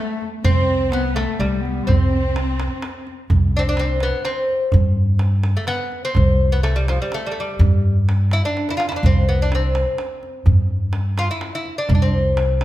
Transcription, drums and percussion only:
0.21 tombak ka
0.45 tombak dum
0.92 tombak tek
1.17 tombak tek
1.41 tombak tek
1.65 tombak ka
1.88 tombak dum
2.36 tombak tek
2.60 tombak tek
2.82 tombak tek
3.07 tombak ka
3.30 tombak dum
3.77 tombak tek
4.00 tombak tek
4.25 tombak tek
4.48 tombak ka
4.72 tombak dum
5.19 tombak tek
5.43 tombak tek
5.67 tombak tek
5.92 tombak ka
6.15 tombak dum
6.64 tombak tek
6.88 tombak tek
7.12 tombak tek
7.37 tombak ka
7.61 tombak dum
8.09 tombak tek
8.31 tombak tek
8.57 tombak tek
8.69 tombak ka
8.80 tombak tek
8.92 tombak ka
9.05 tombak dum
9.52 tombak tek
9.75 tombak tek
9.98 tombak tek
10.23 tombak ka
10.46 tombak dum
10.93 tombak tek
11.18 tombak tek
11.41 tombak tek
11.65 tombak ka
11.89 tombak dum
12.37 tombak tek
12.61 tombak tek

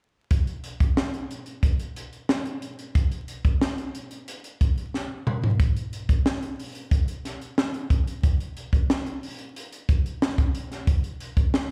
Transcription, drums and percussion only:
0.31 kick, closed hi-hat
0.47 closed hi-hat
0.64 closed hi-hat
0.80 kick, closed hi-hat
0.97 snare
1.14 closed hi-hat
1.31 closed hi-hat
1.46 closed hi-hat
1.63 kick, closed hi-hat
1.80 closed hi-hat
1.96 closed hi-hat
2.13 closed hi-hat
2.29 snare
2.46 closed hi-hat
2.62 closed hi-hat
2.79 closed hi-hat
2.95 kick, closed hi-hat
3.12 closed hi-hat
3.28 closed hi-hat
3.45 kick, closed hi-hat
3.62 snare
3.78 closed hi-hat
3.95 closed hi-hat
4.11 closed hi-hat
4.28 closed hi-hat
4.44 closed hi-hat
4.61 kick, closed hi-hat
4.78 closed hi-hat
4.94 snare
5.27 mid tom
5.44 floor tom
5.60 kick, closed hi-hat
5.77 closed hi-hat
5.93 closed hi-hat
6.09 kick, closed hi-hat
6.26 snare
6.42 closed hi-hat
6.59 open hi-hat
6.75 closed hi-hat
6.91 kick, closed hi-hat
7.08 closed hi-hat
7.25 snare, closed hi-hat
7.42 closed hi-hat
7.58 snare
7.74 closed hi-hat
7.90 kick, closed hi-hat
8.07 closed hi-hat
8.23 kick, closed hi-hat
8.40 closed hi-hat
8.57 closed hi-hat
8.73 kick, closed hi-hat
8.90 snare
9.06 closed hi-hat
9.23 open hi-hat
9.39 closed hi-hat
9.56 closed hi-hat
9.72 closed hi-hat
9.89 kick, closed hi-hat
10.06 closed hi-hat
10.22 snare
10.38 kick, closed hi-hat
10.55 closed hi-hat
10.72 snare, closed hi-hat
10.87 kick, closed hi-hat
11.04 closed hi-hat
11.20 closed hi-hat
11.37 kick, closed hi-hat
11.54 snare

